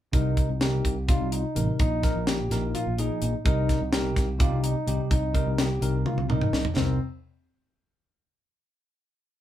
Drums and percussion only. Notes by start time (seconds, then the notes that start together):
0.13 kick, closed hi-hat
0.37 kick, closed hi-hat
0.61 snare, closed hi-hat
0.85 kick, closed hi-hat
1.08 kick, closed hi-hat
1.32 closed hi-hat
1.56 closed hi-hat
1.79 kick, closed hi-hat
2.03 kick, snare, closed hi-hat
2.27 snare, closed hi-hat
2.51 snare, closed hi-hat
2.75 closed hi-hat
2.98 closed hi-hat
3.22 closed hi-hat
3.46 kick, closed hi-hat
3.69 kick, snare, closed hi-hat
3.93 snare, closed hi-hat
4.16 kick, snare, closed hi-hat
4.40 kick, closed hi-hat
4.64 closed hi-hat
4.88 closed hi-hat
5.11 kick, closed hi-hat
5.35 kick, closed hi-hat
5.58 snare, closed hi-hat
5.82 closed hi-hat
6.06 high tom
6.18 high tom
6.30 mid tom
6.41 mid tom
6.53 snare
6.65 floor tom
6.77 snare, floor tom